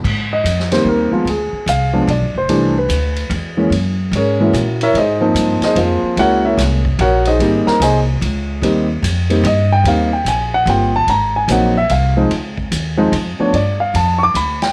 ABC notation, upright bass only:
X:1
M:3/4
L:1/8
Q:"Swing" 1/4=147
K:Ab
V:1 name="Upright bass" clef=bass
A,,2 F,,2 E,, z | =D,, z C,,2 (3=B,,, G,,, F,,, | C,,2 =D,,2 =E,,2 | _G,,2 A,,2 B,,2 |
A,,2 G,, z F,, z | D,,2 C,,2 B,,,2 | A,,, z C,,2 D,,2 | E,,2 F,,2 G,,2 |
E,,2 B,,,2 G,,,2 | A,,,2 B,,,2 C,,2 | D,,2 E,,2 F,, z | G,,2 F,,2 =D,,2 |]